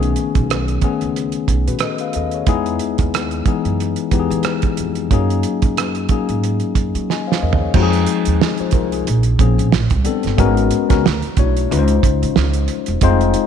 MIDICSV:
0, 0, Header, 1, 5, 480
1, 0, Start_track
1, 0, Key_signature, -5, "major"
1, 0, Tempo, 659341
1, 1795, Time_signature, 4, 2, 24, 8
1, 9803, End_track
2, 0, Start_track
2, 0, Title_t, "Tine electric piano"
2, 0, Program_c, 0, 4
2, 0, Note_on_c, 0, 51, 93
2, 0, Note_on_c, 0, 57, 87
2, 0, Note_on_c, 0, 59, 84
2, 0, Note_on_c, 0, 61, 89
2, 0, Note_on_c, 0, 68, 106
2, 17, Control_c, 0, 64, 127
2, 534, Note_off_c, 0, 57, 0
2, 537, Note_off_c, 0, 59, 0
2, 539, Note_off_c, 0, 61, 0
2, 541, Note_off_c, 0, 68, 0
2, 557, Note_off_c, 0, 51, 0
2, 600, Note_on_c, 0, 51, 67
2, 605, Note_on_c, 0, 57, 68
2, 609, Note_on_c, 0, 59, 69
2, 612, Note_on_c, 0, 61, 67
2, 613, Note_on_c, 0, 68, 79
2, 1033, Note_off_c, 0, 51, 0
2, 1036, Note_off_c, 0, 57, 0
2, 1038, Note_off_c, 0, 59, 0
2, 1039, Note_off_c, 0, 61, 0
2, 1040, Note_off_c, 0, 68, 0
2, 1221, Note_on_c, 0, 71, 55
2, 1227, Note_on_c, 0, 66, 48
2, 1317, Note_off_c, 0, 71, 0
2, 1320, Note_off_c, 0, 66, 0
2, 1329, Note_on_c, 0, 75, 60
2, 1332, Note_on_c, 0, 69, 50
2, 1449, Note_off_c, 0, 75, 0
2, 1450, Note_off_c, 0, 69, 0
2, 1461, Note_on_c, 0, 77, 59
2, 1465, Note_on_c, 0, 71, 53
2, 1557, Note_off_c, 0, 77, 0
2, 1559, Note_off_c, 0, 71, 0
2, 1570, Note_on_c, 0, 75, 61
2, 1571, Note_on_c, 0, 69, 50
2, 1689, Note_off_c, 0, 75, 0
2, 1690, Note_off_c, 0, 69, 0
2, 1706, Note_on_c, 0, 73, 53
2, 1711, Note_on_c, 0, 68, 45
2, 1796, Note_on_c, 0, 64, 95
2, 1800, Note_on_c, 0, 56, 88
2, 1803, Note_off_c, 0, 68, 0
2, 1803, Note_on_c, 0, 59, 87
2, 1805, Control_c, 0, 64, 0
2, 1807, Note_on_c, 0, 63, 86
2, 1812, Note_on_c, 0, 68, 105
2, 1926, Note_off_c, 0, 73, 0
2, 1936, Control_c, 0, 64, 127
2, 2449, Note_off_c, 0, 64, 0
2, 2451, Note_off_c, 0, 56, 0
2, 2452, Note_off_c, 0, 59, 0
2, 2454, Note_off_c, 0, 63, 0
2, 2457, Note_off_c, 0, 68, 0
2, 2519, Note_on_c, 0, 52, 75
2, 2522, Note_on_c, 0, 56, 68
2, 2527, Note_on_c, 0, 59, 69
2, 2531, Note_on_c, 0, 63, 68
2, 2533, Note_on_c, 0, 68, 76
2, 2953, Note_off_c, 0, 52, 0
2, 2954, Note_off_c, 0, 56, 0
2, 2957, Note_off_c, 0, 59, 0
2, 2959, Note_off_c, 0, 63, 0
2, 2960, Note_off_c, 0, 68, 0
2, 2994, Note_on_c, 0, 52, 75
2, 2997, Note_on_c, 0, 56, 73
2, 2999, Note_on_c, 0, 59, 72
2, 3006, Note_on_c, 0, 63, 70
2, 3009, Note_on_c, 0, 67, 69
2, 3053, Note_on_c, 0, 68, 85
2, 3054, Note_off_c, 0, 67, 0
2, 3648, Note_off_c, 0, 52, 0
2, 3650, Note_off_c, 0, 56, 0
2, 3651, Note_off_c, 0, 59, 0
2, 3654, Note_off_c, 0, 63, 0
2, 3678, Note_off_c, 0, 68, 0
2, 3723, Control_c, 0, 64, 0
2, 3723, Note_on_c, 0, 54, 98
2, 3726, Note_on_c, 0, 58, 87
2, 3729, Note_on_c, 0, 61, 81
2, 3733, Note_on_c, 0, 63, 81
2, 3739, Note_on_c, 0, 68, 104
2, 3863, Control_c, 0, 64, 127
2, 4373, Note_off_c, 0, 54, 0
2, 4374, Note_off_c, 0, 58, 0
2, 4376, Note_off_c, 0, 61, 0
2, 4377, Note_off_c, 0, 63, 0
2, 4381, Note_off_c, 0, 68, 0
2, 4442, Note_on_c, 0, 54, 66
2, 4443, Note_on_c, 0, 58, 64
2, 4446, Note_on_c, 0, 61, 60
2, 4450, Note_on_c, 0, 63, 60
2, 4453, Note_on_c, 0, 68, 81
2, 4874, Note_off_c, 0, 54, 0
2, 4875, Note_off_c, 0, 58, 0
2, 4876, Note_off_c, 0, 61, 0
2, 4878, Note_off_c, 0, 63, 0
2, 4880, Note_off_c, 0, 68, 0
2, 5171, Note_on_c, 0, 80, 57
2, 5175, Note_on_c, 0, 75, 45
2, 5290, Note_off_c, 0, 80, 0
2, 5292, Note_off_c, 0, 75, 0
2, 5295, Note_on_c, 0, 77, 56
2, 5297, Note_on_c, 0, 72, 47
2, 5394, Note_off_c, 0, 77, 0
2, 5395, Note_off_c, 0, 72, 0
2, 5407, Note_on_c, 0, 75, 60
2, 5411, Note_on_c, 0, 70, 52
2, 5527, Note_off_c, 0, 75, 0
2, 5530, Note_off_c, 0, 70, 0
2, 5536, Note_on_c, 0, 73, 48
2, 5540, Note_on_c, 0, 68, 45
2, 5636, Note_on_c, 0, 53, 100
2, 5641, Note_on_c, 0, 56, 93
2, 5643, Note_on_c, 0, 60, 88
2, 5646, Control_c, 0, 64, 0
2, 5648, Note_on_c, 0, 63, 93
2, 5651, Note_on_c, 0, 66, 89
2, 5688, Note_off_c, 0, 68, 0
2, 5696, Note_off_c, 0, 66, 0
2, 5697, Note_on_c, 0, 68, 109
2, 5760, Note_off_c, 0, 73, 0
2, 5787, Control_c, 0, 64, 127
2, 6122, Note_off_c, 0, 63, 0
2, 6122, Note_off_c, 0, 68, 0
2, 6131, Note_on_c, 0, 63, 54
2, 6131, Note_on_c, 0, 68, 61
2, 6250, Note_off_c, 0, 63, 0
2, 6250, Note_off_c, 0, 68, 0
2, 6263, Note_on_c, 0, 72, 65
2, 6264, Note_on_c, 0, 65, 51
2, 6289, Note_off_c, 0, 53, 0
2, 6292, Note_off_c, 0, 56, 0
2, 6293, Note_off_c, 0, 60, 0
2, 6358, Note_off_c, 0, 65, 0
2, 6358, Note_off_c, 0, 72, 0
2, 6361, Note_on_c, 0, 70, 67
2, 6367, Note_on_c, 0, 65, 54
2, 6484, Note_off_c, 0, 70, 0
2, 6488, Note_off_c, 0, 65, 0
2, 6495, Note_on_c, 0, 68, 59
2, 6501, Note_on_c, 0, 63, 49
2, 6605, Control_c, 0, 64, 0
2, 6720, Note_off_c, 0, 68, 0
2, 6723, Note_off_c, 0, 63, 0
2, 6742, Control_c, 0, 64, 127
2, 6836, Note_on_c, 0, 53, 80
2, 6838, Note_on_c, 0, 58, 68
2, 6842, Note_on_c, 0, 60, 68
2, 6846, Note_on_c, 0, 61, 66
2, 6849, Note_on_c, 0, 68, 83
2, 7076, Note_off_c, 0, 53, 0
2, 7077, Note_off_c, 0, 58, 0
2, 7079, Note_off_c, 0, 60, 0
2, 7081, Note_off_c, 0, 61, 0
2, 7082, Note_off_c, 0, 68, 0
2, 7086, Control_c, 0, 64, 0
2, 7201, Control_c, 0, 64, 127
2, 7311, Note_on_c, 0, 55, 82
2, 7315, Note_on_c, 0, 59, 75
2, 7321, Note_on_c, 0, 60, 73
2, 7321, Note_on_c, 0, 62, 71
2, 7325, Note_on_c, 0, 69, 92
2, 7531, Note_off_c, 0, 55, 0
2, 7533, Note_off_c, 0, 59, 0
2, 7536, Note_off_c, 0, 60, 0
2, 7536, Note_off_c, 0, 62, 0
2, 7538, Note_off_c, 0, 69, 0
2, 7553, Note_on_c, 0, 56, 109
2, 7557, Note_on_c, 0, 59, 94
2, 7559, Note_on_c, 0, 61, 97
2, 7563, Note_on_c, 0, 66, 97
2, 7564, Control_c, 0, 64, 0
2, 7567, Note_on_c, 0, 70, 114
2, 7712, Control_c, 0, 64, 127
2, 7886, Note_off_c, 0, 56, 0
2, 7888, Note_off_c, 0, 59, 0
2, 7889, Note_off_c, 0, 61, 0
2, 7891, Note_off_c, 0, 66, 0
2, 7893, Note_off_c, 0, 70, 0
2, 7927, Note_on_c, 0, 56, 77
2, 7932, Note_on_c, 0, 61, 72
2, 7933, Note_on_c, 0, 59, 68
2, 7935, Note_on_c, 0, 66, 69
2, 7941, Note_on_c, 0, 70, 83
2, 8035, Note_off_c, 0, 56, 0
2, 8037, Note_off_c, 0, 61, 0
2, 8038, Note_off_c, 0, 59, 0
2, 8039, Note_off_c, 0, 66, 0
2, 8042, Note_off_c, 0, 70, 0
2, 8045, Control_c, 0, 64, 0
2, 8154, Control_c, 0, 64, 127
2, 8280, Note_on_c, 0, 57, 75
2, 8287, Note_on_c, 0, 62, 68
2, 8288, Note_on_c, 0, 64, 68
2, 8292, Note_on_c, 0, 66, 66
2, 8294, Note_on_c, 0, 73, 82
2, 8518, Note_off_c, 0, 57, 0
2, 8520, Note_on_c, 0, 56, 84
2, 8521, Note_off_c, 0, 62, 0
2, 8522, Note_off_c, 0, 64, 0
2, 8524, Note_off_c, 0, 66, 0
2, 8525, Note_off_c, 0, 73, 0
2, 8525, Control_c, 0, 64, 0
2, 8527, Note_on_c, 0, 61, 75
2, 8530, Note_on_c, 0, 63, 84
2, 8534, Note_on_c, 0, 65, 78
2, 8536, Note_on_c, 0, 71, 74
2, 8578, Note_off_c, 0, 71, 0
2, 8582, Note_on_c, 0, 72, 99
2, 8664, Control_c, 0, 64, 127
2, 9389, Note_off_c, 0, 56, 0
2, 9392, Note_off_c, 0, 61, 0
2, 9394, Note_off_c, 0, 63, 0
2, 9396, Note_off_c, 0, 65, 0
2, 9420, Note_off_c, 0, 72, 0
2, 9481, Note_on_c, 0, 56, 112
2, 9485, Control_c, 0, 64, 0
2, 9486, Note_on_c, 0, 60, 100
2, 9488, Note_on_c, 0, 63, 99
2, 9492, Note_on_c, 0, 65, 99
2, 9495, Note_on_c, 0, 72, 117
2, 9608, Control_c, 0, 64, 127
2, 9803, Note_off_c, 0, 56, 0
2, 9803, Note_off_c, 0, 60, 0
2, 9803, Note_off_c, 0, 63, 0
2, 9803, Note_off_c, 0, 65, 0
2, 9803, Note_off_c, 0, 72, 0
2, 9803, End_track
3, 0, Start_track
3, 0, Title_t, "Upright bass"
3, 0, Program_c, 1, 32
3, 0, Note_on_c, 1, 35, 94
3, 98, Note_off_c, 1, 35, 0
3, 265, Note_on_c, 1, 35, 87
3, 575, Note_off_c, 1, 35, 0
3, 742, Note_on_c, 1, 37, 72
3, 954, Note_off_c, 1, 37, 0
3, 1083, Note_on_c, 1, 35, 79
3, 1200, Note_off_c, 1, 35, 0
3, 1219, Note_on_c, 1, 47, 76
3, 1312, Note_off_c, 1, 47, 0
3, 1568, Note_on_c, 1, 39, 71
3, 1781, Note_off_c, 1, 39, 0
3, 1803, Note_on_c, 1, 40, 92
3, 2018, Note_off_c, 1, 40, 0
3, 2180, Note_on_c, 1, 39, 87
3, 2492, Note_off_c, 1, 39, 0
3, 2656, Note_on_c, 1, 42, 67
3, 2871, Note_off_c, 1, 42, 0
3, 3002, Note_on_c, 1, 40, 82
3, 3120, Note_off_c, 1, 40, 0
3, 3133, Note_on_c, 1, 52, 86
3, 3229, Note_off_c, 1, 52, 0
3, 3482, Note_on_c, 1, 41, 79
3, 3698, Note_off_c, 1, 41, 0
3, 3725, Note_on_c, 1, 42, 87
3, 3939, Note_off_c, 1, 42, 0
3, 4103, Note_on_c, 1, 42, 82
3, 4414, Note_off_c, 1, 42, 0
3, 4576, Note_on_c, 1, 44, 74
3, 4791, Note_off_c, 1, 44, 0
3, 4923, Note_on_c, 1, 42, 73
3, 5040, Note_off_c, 1, 42, 0
3, 5057, Note_on_c, 1, 54, 79
3, 5151, Note_off_c, 1, 54, 0
3, 5404, Note_on_c, 1, 40, 72
3, 5619, Note_off_c, 1, 40, 0
3, 5642, Note_on_c, 1, 41, 97
3, 5858, Note_off_c, 1, 41, 0
3, 6020, Note_on_c, 1, 39, 85
3, 6112, Note_off_c, 1, 39, 0
3, 6359, Note_on_c, 1, 36, 86
3, 6576, Note_off_c, 1, 36, 0
3, 6604, Note_on_c, 1, 34, 96
3, 6819, Note_off_c, 1, 34, 0
3, 6842, Note_on_c, 1, 34, 94
3, 6960, Note_off_c, 1, 34, 0
3, 6976, Note_on_c, 1, 46, 84
3, 7070, Note_off_c, 1, 46, 0
3, 7085, Note_on_c, 1, 33, 92
3, 7201, Note_off_c, 1, 33, 0
3, 7217, Note_on_c, 1, 36, 90
3, 7311, Note_off_c, 1, 36, 0
3, 7457, Note_on_c, 1, 31, 77
3, 7551, Note_off_c, 1, 31, 0
3, 7565, Note_on_c, 1, 32, 105
3, 7779, Note_off_c, 1, 32, 0
3, 7943, Note_on_c, 1, 37, 96
3, 8034, Note_off_c, 1, 37, 0
3, 8047, Note_on_c, 1, 38, 94
3, 8163, Note_off_c, 1, 38, 0
3, 8284, Note_on_c, 1, 35, 88
3, 8499, Note_off_c, 1, 35, 0
3, 8527, Note_on_c, 1, 37, 110
3, 8740, Note_off_c, 1, 37, 0
3, 8768, Note_on_c, 1, 37, 89
3, 8883, Note_off_c, 1, 37, 0
3, 8899, Note_on_c, 1, 49, 90
3, 8992, Note_off_c, 1, 49, 0
3, 9001, Note_on_c, 1, 37, 92
3, 9217, Note_off_c, 1, 37, 0
3, 9378, Note_on_c, 1, 28, 86
3, 9471, Note_off_c, 1, 28, 0
3, 9482, Note_on_c, 1, 29, 109
3, 9698, Note_off_c, 1, 29, 0
3, 9803, End_track
4, 0, Start_track
4, 0, Title_t, "Muted upright bass strokes"
4, 4440, Note_on_c, 9, 29, 42
4, 4513, Note_off_c, 9, 29, 0
4, 6255, Note_on_c, 9, 29, 46
4, 6328, Note_off_c, 9, 29, 0
4, 8179, Note_on_c, 9, 29, 47
4, 8252, Note_off_c, 9, 29, 0
4, 9803, End_track
5, 0, Start_track
5, 0, Title_t, "Drums"
5, 19, Note_on_c, 9, 42, 37
5, 92, Note_off_c, 9, 42, 0
5, 116, Note_on_c, 9, 42, 57
5, 188, Note_off_c, 9, 42, 0
5, 255, Note_on_c, 9, 42, 53
5, 257, Note_on_c, 9, 36, 85
5, 260, Note_on_c, 9, 37, 29
5, 328, Note_off_c, 9, 42, 0
5, 330, Note_off_c, 9, 36, 0
5, 333, Note_off_c, 9, 37, 0
5, 367, Note_on_c, 9, 42, 70
5, 373, Note_on_c, 9, 37, 96
5, 439, Note_off_c, 9, 42, 0
5, 446, Note_off_c, 9, 37, 0
5, 496, Note_on_c, 9, 42, 39
5, 569, Note_off_c, 9, 42, 0
5, 593, Note_on_c, 9, 42, 50
5, 597, Note_on_c, 9, 36, 86
5, 666, Note_off_c, 9, 42, 0
5, 670, Note_off_c, 9, 36, 0
5, 736, Note_on_c, 9, 42, 42
5, 809, Note_off_c, 9, 42, 0
5, 847, Note_on_c, 9, 42, 60
5, 920, Note_off_c, 9, 42, 0
5, 962, Note_on_c, 9, 42, 43
5, 1035, Note_off_c, 9, 42, 0
5, 1077, Note_on_c, 9, 36, 74
5, 1081, Note_on_c, 9, 42, 70
5, 1150, Note_off_c, 9, 36, 0
5, 1154, Note_off_c, 9, 42, 0
5, 1220, Note_on_c, 9, 42, 48
5, 1293, Note_off_c, 9, 42, 0
5, 1301, Note_on_c, 9, 42, 65
5, 1314, Note_on_c, 9, 37, 101
5, 1374, Note_off_c, 9, 42, 0
5, 1387, Note_off_c, 9, 37, 0
5, 1444, Note_on_c, 9, 42, 42
5, 1517, Note_off_c, 9, 42, 0
5, 1552, Note_on_c, 9, 42, 65
5, 1624, Note_off_c, 9, 42, 0
5, 1685, Note_on_c, 9, 42, 37
5, 1758, Note_off_c, 9, 42, 0
5, 1795, Note_on_c, 9, 42, 73
5, 1797, Note_on_c, 9, 36, 93
5, 1868, Note_off_c, 9, 42, 0
5, 1870, Note_off_c, 9, 36, 0
5, 1936, Note_on_c, 9, 42, 35
5, 2009, Note_off_c, 9, 42, 0
5, 2034, Note_on_c, 9, 42, 56
5, 2107, Note_off_c, 9, 42, 0
5, 2170, Note_on_c, 9, 42, 51
5, 2175, Note_on_c, 9, 36, 89
5, 2175, Note_on_c, 9, 37, 30
5, 2243, Note_off_c, 9, 42, 0
5, 2248, Note_off_c, 9, 36, 0
5, 2248, Note_off_c, 9, 37, 0
5, 2286, Note_on_c, 9, 42, 70
5, 2292, Note_on_c, 9, 37, 95
5, 2359, Note_off_c, 9, 42, 0
5, 2365, Note_off_c, 9, 37, 0
5, 2410, Note_on_c, 9, 42, 37
5, 2483, Note_off_c, 9, 42, 0
5, 2515, Note_on_c, 9, 42, 52
5, 2516, Note_on_c, 9, 36, 89
5, 2588, Note_off_c, 9, 42, 0
5, 2589, Note_off_c, 9, 36, 0
5, 2658, Note_on_c, 9, 42, 42
5, 2731, Note_off_c, 9, 42, 0
5, 2769, Note_on_c, 9, 42, 63
5, 2841, Note_off_c, 9, 42, 0
5, 2883, Note_on_c, 9, 42, 45
5, 2956, Note_off_c, 9, 42, 0
5, 2995, Note_on_c, 9, 42, 74
5, 2996, Note_on_c, 9, 36, 78
5, 3068, Note_off_c, 9, 42, 0
5, 3069, Note_off_c, 9, 36, 0
5, 3140, Note_on_c, 9, 42, 49
5, 3213, Note_off_c, 9, 42, 0
5, 3225, Note_on_c, 9, 42, 64
5, 3238, Note_on_c, 9, 37, 102
5, 3298, Note_off_c, 9, 42, 0
5, 3310, Note_off_c, 9, 37, 0
5, 3364, Note_on_c, 9, 42, 47
5, 3371, Note_on_c, 9, 36, 81
5, 3436, Note_off_c, 9, 42, 0
5, 3444, Note_off_c, 9, 36, 0
5, 3474, Note_on_c, 9, 42, 67
5, 3547, Note_off_c, 9, 42, 0
5, 3606, Note_on_c, 9, 42, 40
5, 3679, Note_off_c, 9, 42, 0
5, 3719, Note_on_c, 9, 36, 106
5, 3720, Note_on_c, 9, 42, 76
5, 3791, Note_off_c, 9, 36, 0
5, 3793, Note_off_c, 9, 42, 0
5, 3861, Note_on_c, 9, 42, 38
5, 3934, Note_off_c, 9, 42, 0
5, 3955, Note_on_c, 9, 42, 57
5, 4027, Note_off_c, 9, 42, 0
5, 4091, Note_on_c, 9, 42, 53
5, 4095, Note_on_c, 9, 36, 86
5, 4164, Note_off_c, 9, 42, 0
5, 4168, Note_off_c, 9, 36, 0
5, 4204, Note_on_c, 9, 42, 76
5, 4210, Note_on_c, 9, 37, 100
5, 4277, Note_off_c, 9, 42, 0
5, 4283, Note_off_c, 9, 37, 0
5, 4331, Note_on_c, 9, 42, 39
5, 4403, Note_off_c, 9, 42, 0
5, 4431, Note_on_c, 9, 42, 52
5, 4435, Note_on_c, 9, 36, 86
5, 4504, Note_off_c, 9, 42, 0
5, 4508, Note_off_c, 9, 36, 0
5, 4578, Note_on_c, 9, 42, 44
5, 4651, Note_off_c, 9, 42, 0
5, 4685, Note_on_c, 9, 42, 58
5, 4758, Note_off_c, 9, 42, 0
5, 4803, Note_on_c, 9, 42, 42
5, 4876, Note_off_c, 9, 42, 0
5, 4917, Note_on_c, 9, 36, 74
5, 4917, Note_on_c, 9, 42, 73
5, 4989, Note_off_c, 9, 36, 0
5, 4990, Note_off_c, 9, 42, 0
5, 5061, Note_on_c, 9, 42, 46
5, 5134, Note_off_c, 9, 42, 0
5, 5169, Note_on_c, 9, 38, 47
5, 5241, Note_off_c, 9, 38, 0
5, 5327, Note_on_c, 9, 38, 57
5, 5400, Note_off_c, 9, 38, 0
5, 5480, Note_on_c, 9, 43, 86
5, 5553, Note_off_c, 9, 43, 0
5, 5634, Note_on_c, 9, 49, 91
5, 5636, Note_on_c, 9, 36, 119
5, 5706, Note_off_c, 9, 49, 0
5, 5708, Note_off_c, 9, 36, 0
5, 5774, Note_on_c, 9, 42, 42
5, 5847, Note_off_c, 9, 42, 0
5, 5871, Note_on_c, 9, 42, 67
5, 5944, Note_off_c, 9, 42, 0
5, 6009, Note_on_c, 9, 42, 54
5, 6081, Note_off_c, 9, 42, 0
5, 6126, Note_on_c, 9, 38, 106
5, 6199, Note_off_c, 9, 38, 0
5, 6243, Note_on_c, 9, 42, 40
5, 6316, Note_off_c, 9, 42, 0
5, 6342, Note_on_c, 9, 42, 58
5, 6353, Note_on_c, 9, 36, 97
5, 6414, Note_off_c, 9, 42, 0
5, 6426, Note_off_c, 9, 36, 0
5, 6496, Note_on_c, 9, 42, 49
5, 6568, Note_off_c, 9, 42, 0
5, 6604, Note_on_c, 9, 42, 67
5, 6676, Note_off_c, 9, 42, 0
5, 6721, Note_on_c, 9, 42, 47
5, 6793, Note_off_c, 9, 42, 0
5, 6837, Note_on_c, 9, 36, 91
5, 6840, Note_on_c, 9, 42, 77
5, 6910, Note_off_c, 9, 36, 0
5, 6913, Note_off_c, 9, 42, 0
5, 6982, Note_on_c, 9, 42, 53
5, 7055, Note_off_c, 9, 42, 0
5, 7079, Note_on_c, 9, 38, 105
5, 7152, Note_off_c, 9, 38, 0
5, 7206, Note_on_c, 9, 42, 48
5, 7213, Note_on_c, 9, 36, 94
5, 7279, Note_off_c, 9, 42, 0
5, 7286, Note_off_c, 9, 36, 0
5, 7314, Note_on_c, 9, 42, 68
5, 7387, Note_off_c, 9, 42, 0
5, 7448, Note_on_c, 9, 42, 46
5, 7470, Note_on_c, 9, 38, 29
5, 7521, Note_off_c, 9, 42, 0
5, 7543, Note_off_c, 9, 38, 0
5, 7559, Note_on_c, 9, 36, 111
5, 7559, Note_on_c, 9, 42, 77
5, 7632, Note_off_c, 9, 36, 0
5, 7632, Note_off_c, 9, 42, 0
5, 7697, Note_on_c, 9, 42, 42
5, 7769, Note_off_c, 9, 42, 0
5, 7794, Note_on_c, 9, 42, 64
5, 7867, Note_off_c, 9, 42, 0
5, 7935, Note_on_c, 9, 42, 56
5, 7937, Note_on_c, 9, 36, 98
5, 7940, Note_on_c, 9, 38, 31
5, 8008, Note_off_c, 9, 42, 0
5, 8010, Note_off_c, 9, 36, 0
5, 8013, Note_off_c, 9, 38, 0
5, 8050, Note_on_c, 9, 38, 108
5, 8123, Note_off_c, 9, 38, 0
5, 8171, Note_on_c, 9, 42, 40
5, 8244, Note_off_c, 9, 42, 0
5, 8275, Note_on_c, 9, 42, 59
5, 8278, Note_on_c, 9, 36, 94
5, 8348, Note_off_c, 9, 42, 0
5, 8351, Note_off_c, 9, 36, 0
5, 8420, Note_on_c, 9, 42, 46
5, 8493, Note_off_c, 9, 42, 0
5, 8532, Note_on_c, 9, 42, 70
5, 8605, Note_off_c, 9, 42, 0
5, 8647, Note_on_c, 9, 42, 48
5, 8720, Note_off_c, 9, 42, 0
5, 8759, Note_on_c, 9, 36, 91
5, 8763, Note_on_c, 9, 42, 83
5, 8832, Note_off_c, 9, 36, 0
5, 8835, Note_off_c, 9, 42, 0
5, 8902, Note_on_c, 9, 42, 54
5, 8975, Note_off_c, 9, 42, 0
5, 8997, Note_on_c, 9, 38, 100
5, 9070, Note_off_c, 9, 38, 0
5, 9125, Note_on_c, 9, 42, 50
5, 9198, Note_off_c, 9, 42, 0
5, 9230, Note_on_c, 9, 42, 73
5, 9303, Note_off_c, 9, 42, 0
5, 9363, Note_on_c, 9, 42, 45
5, 9436, Note_off_c, 9, 42, 0
5, 9472, Note_on_c, 9, 42, 89
5, 9476, Note_on_c, 9, 36, 109
5, 9545, Note_off_c, 9, 42, 0
5, 9549, Note_off_c, 9, 36, 0
5, 9615, Note_on_c, 9, 42, 40
5, 9688, Note_off_c, 9, 42, 0
5, 9709, Note_on_c, 9, 42, 63
5, 9782, Note_off_c, 9, 42, 0
5, 9803, End_track
0, 0, End_of_file